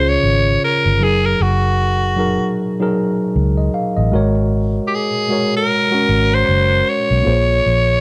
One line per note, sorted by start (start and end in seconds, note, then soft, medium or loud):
0.00 0.17 C#2 medium
0.00 1.03 C#3 medium
0.00 1.03 C#4 medium
0.00 1.03 F4 medium
0.00 0.72 G#4 medium
0.00 0.10 C5 loud
0.00 1.03 C#5 medium
0.09 0.63 C#5 medium
0.23 0.56 G#1 medium
0.64 1.05 A#4 medium
0.86 1.01 G1 medium
1.00 1.33 F#1 medium
1.00 1.93 F#3 medium
1.00 1.94 D#4 medium
1.00 1.95 G#4 medium
1.00 1.28 G#4 medium
1.00 1.95 A#4 medium
1.26 1.44 A#4 medium
1.40 2.37 F#1 medium
1.40 2.59 F#4 medium
2.16 2.64 F#3 medium
2.16 2.65 D#4 medium
2.16 2.65 G#4 medium
2.16 2.65 A#4 medium
2.80 3.84 F#3 medium
2.80 3.85 D#4 medium
2.80 3.85 G#4 medium
2.80 3.86 A#4 medium
3.36 3.68 C#2 medium
3.57 3.74 D#5 soft
3.74 3.96 F5 medium
3.96 4.11 A1 medium
3.96 4.34 D#5 medium
4.12 4.79 G#1 medium
4.12 5.06 G#3 medium
4.12 5.07 F#4 medium
4.12 5.07 A#4 medium
4.12 5.08 C#5 medium
4.87 4.96 G4 medium
4.95 5.55 G#4 medium
5.29 5.77 G#3 medium
5.29 5.77 F#4 medium
5.29 5.78 A#4 medium
5.29 5.78 C#5 medium
5.57 6.36 A#4 medium
5.91 6.96 G#3 medium
5.91 6.98 C#4 medium
5.91 6.97 F#4 medium
5.91 6.97 A#4 medium
6.09 6.42 G#1 medium
6.34 6.91 C5 loud
6.49 6.81 F#1 medium
6.89 8.01 C#5 loud
7.11 7.24 B1 medium
7.23 7.59 A#1 loud
7.23 8.01 A#3 medium
7.23 8.01 F4 medium
7.23 8.01 G#4 medium
7.23 7.34 C5 medium
7.33 8.01 C#5 medium
7.66 8.01 A#1 medium